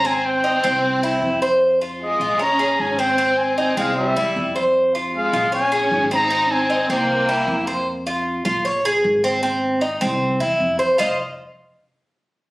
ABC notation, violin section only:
X:1
M:4/4
L:1/8
Q:1/4=154
K:Fm
V:1 name="Violin section"
C C6 z | z2 A,2 D2 D C- | C C C A, G,3 z | z2 A,2 D3 E- |
E C2 B,4 z | z8 | z8 | z8 |]